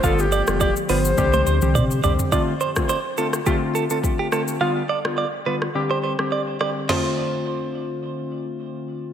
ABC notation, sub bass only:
X:1
M:4/4
L:1/16
Q:"Swing 16ths" 1/4=105
K:F
V:1 name="Sub bass" clef=bass
G,,,3 F,,,2 z G,,,2 C,,2 D,, C,, C,2 C,, z | z16 | z16 | z16 |]